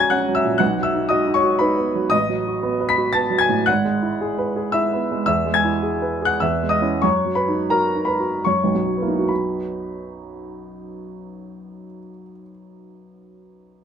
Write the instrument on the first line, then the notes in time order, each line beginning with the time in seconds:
grand piano
Already playing: A#1 F#3 C#4 F#4 C#5 F#5 A#5 F#6 A#6
0.00 G#5 G#6
0.10 C#4 F#5 F#6
0.28 F#3
0.35 E5 E6
0.44 A#2
0.58 B1 F#5 F#6
0.78 F#3
0.83 E5 E6
0.94 D#4
1.09 F#4 D#5 D#6
1.27 D#4
1.34 C#5 C#6
1.43 F#4
1.59 D#4 B4 B5
1.77 B3
1.95 F#3
2.10 A1 D#5 D#6
2.29 F#3
2.47 F#4
2.63 B3
2.81 B4
2.89 B5 B6
2.98 F#4
3.13 B3 A5 A6
3.30 F#3
3.38 G#5 G#6
3.49 A2
3.66 G#1 F#5 F#6
3.85 G#3
4.02 E4
4.21 G#4
4.38 B4
4.56 G#4
4.72 E4 E5 E6
4.93 B3
5.12 G#3
5.26 E2 E5 E6
5.46 G#3
5.54 G#5 G#6
5.64 E4
5.83 G#4
6.02 B4
6.22 G#4 F#6
6.26 F#5
6.40 E2 E5 E6
6.63 G#3
6.69 D#5 D#6
6.81 C#4 E4
7.02 F#2 C#5 C#6
7.25 F#3
7.35 B4 B5
7.48 D#4
7.70 F#4 A#4 A#5
7.95 D#4
8.05 B4 B5
8.20 F#4
8.44 F#2 C#5 C#6
8.64 B1
8.75 F#2 F#3
8.86 F#3
8.97 B3
9.02 A#3 E4
9.08 D#4
9.19 F#4
9.28 B5